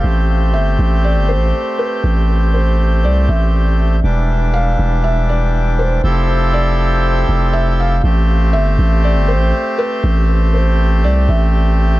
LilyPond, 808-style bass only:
\new Staff \with { instrumentName = "808-style bass" } { \clef bass \time 4/4 \key a \minor \tempo 4 = 120 a,,4 g,,8 a,,8. g,,16. a,,16. r4 | a,,2 c,8 a,,4. | e,,4. e,,2~ e,,8 | f,,2~ f,,8 f,,4. |
a,,4 g,,8 a,,8. g,,16. a,,16. r4 | a,,2 c,8 a,,4. | }